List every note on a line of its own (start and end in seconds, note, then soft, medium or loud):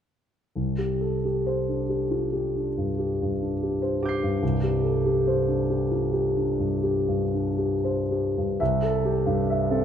0.56 4.39 C2 soft
0.78 1.15 G4 soft
1.01 1.24 A4 soft
1.25 1.60 G4 soft
1.46 1.81 C5 soft
1.68 2.03 D4 soft
1.89 2.24 G4 soft
2.11 2.33 F4 soft
2.33 2.68 G4 soft
2.55 2.89 D4 soft
2.78 3.11 G2 soft
2.99 3.32 G4 soft
3.22 3.54 G2 soft
3.42 3.74 D4 soft
3.63 3.94 G4 soft
3.82 4.14 C5 soft
4.02 4.35 G4 soft
4.02 8.57 D6 soft
4.02 8.58 G6 soft
4.09 8.60 C7 soft
4.23 4.55 G2 soft
4.43 8.56 C2 soft
4.63 4.96 G4 soft
4.83 5.04 A4 soft
5.05 5.39 G4 soft
5.28 5.61 C5 soft
5.48 5.82 D4 soft
5.70 6.05 G4 soft
5.91 6.13 F4 soft
6.13 6.50 G4 soft
6.37 6.74 D4 soft
6.59 6.97 G2 soft
6.83 7.22 G4 soft
7.08 7.48 G2 soft
7.34 7.75 D4 soft
7.58 8.00 G4 soft
7.84 8.27 C5 soft
8.11 8.51 G4 soft
8.38 8.61 G2 soft
8.60 9.85 C2 soft
8.60 8.96 E5 soft
8.83 9.18 A4 soft
9.05 9.40 G4 soft
9.26 9.61 G2 soft
9.50 9.84 E5 soft
9.70 9.85 C4 soft
9.70 9.85 A4 soft